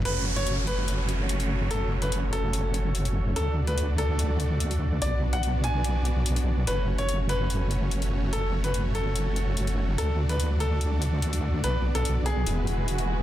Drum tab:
HH |x--xx-x-x-x-xx--|x--xx-x-x-x-xx--|x--xx-x-x-x-xx--|x--xx-x-x-x-xx--|

HH |x--xx-x-x-x-xx--|x--xx-x-x-x-xx--|x--xx-x-x-x-xx--|x--xx-x-x-x-xx--|